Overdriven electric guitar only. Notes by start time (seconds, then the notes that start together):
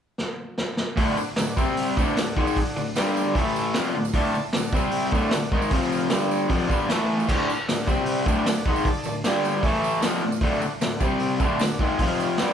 0.97 D2 A2 D3
1.19 muted overdriven electric guitar stroke
1.38 D2 A2
1.56 C3 G3 C4
1.97 D2 A2 D3
2.17 D2 A2
2.36 G#2 D#3 G#3
2.77 D2 A2
2.96 G2 D3 G3
3.35 A2 E3 A3
3.75 F2 C3 F3
3.95 D2 A2
4.14 D2 A2 D3
4.35 muted overdriven electric guitar stroke
4.54 D2 A2
4.73 C3 G3 C4
5.12 D2 A2 D3
5.34 D2 A2
5.52 G#2 D#3 G#3
5.72 F2 C3 F3
6.11 G2 D3 G3
6.49 F2 C3 F3
6.69 G2 D3 G3
6.88 A2 E3 A3
7.28 D2 A2 D3
7.49 muted overdriven electric guitar stroke
7.69 D2 A2
7.87 C3 G3 C4
8.25 D2 A2 D3
8.47 D2 A2
8.66 G#2 D#3 G#3
9.06 D2 A2
9.24 G2 D3 G3
9.64 A2 E3 A3
10.02 F2 C3 F3
10.23 D2 A2
10.41 D2 A2 D3
10.61 muted overdriven electric guitar stroke
10.81 D2 A2
11.00 C3 G3 C4
11.40 D2 A2 D3
11.60 D2 A2
11.80 G#2 D#3 G#3
11.99 F2 C3 F3
12.39 G2 D3 G3